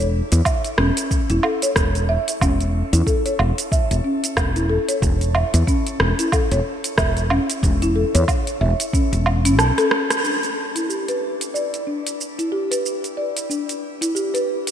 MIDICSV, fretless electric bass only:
0, 0, Header, 1, 2, 480
1, 0, Start_track
1, 0, Tempo, 652174
1, 1777, Time_signature, 4, 2, 24, 8
1, 10827, End_track
2, 0, Start_track
2, 0, Title_t, "Fretless electric bass"
2, 0, Program_c, 0, 35
2, 0, Note_on_c, 0, 28, 101
2, 151, Note_off_c, 0, 28, 0
2, 236, Note_on_c, 0, 40, 84
2, 298, Note_off_c, 0, 40, 0
2, 575, Note_on_c, 0, 28, 91
2, 663, Note_off_c, 0, 28, 0
2, 955, Note_on_c, 0, 28, 78
2, 1018, Note_off_c, 0, 28, 0
2, 1296, Note_on_c, 0, 28, 81
2, 1591, Note_off_c, 0, 28, 0
2, 1777, Note_on_c, 0, 28, 92
2, 2072, Note_off_c, 0, 28, 0
2, 2156, Note_on_c, 0, 40, 84
2, 2218, Note_off_c, 0, 40, 0
2, 2497, Note_on_c, 0, 28, 92
2, 2584, Note_off_c, 0, 28, 0
2, 2877, Note_on_c, 0, 28, 89
2, 2939, Note_off_c, 0, 28, 0
2, 3215, Note_on_c, 0, 28, 83
2, 3511, Note_off_c, 0, 28, 0
2, 3696, Note_on_c, 0, 28, 100
2, 3992, Note_off_c, 0, 28, 0
2, 4076, Note_on_c, 0, 40, 81
2, 4138, Note_off_c, 0, 40, 0
2, 4418, Note_on_c, 0, 28, 90
2, 4504, Note_off_c, 0, 28, 0
2, 4795, Note_on_c, 0, 28, 88
2, 4858, Note_off_c, 0, 28, 0
2, 5136, Note_on_c, 0, 28, 83
2, 5431, Note_off_c, 0, 28, 0
2, 5615, Note_on_c, 0, 28, 98
2, 5911, Note_off_c, 0, 28, 0
2, 5998, Note_on_c, 0, 40, 88
2, 6059, Note_off_c, 0, 40, 0
2, 6336, Note_on_c, 0, 28, 93
2, 6424, Note_off_c, 0, 28, 0
2, 6716, Note_on_c, 0, 28, 85
2, 7055, Note_off_c, 0, 28, 0
2, 7055, Note_on_c, 0, 35, 97
2, 7143, Note_off_c, 0, 35, 0
2, 10827, End_track
0, 0, End_of_file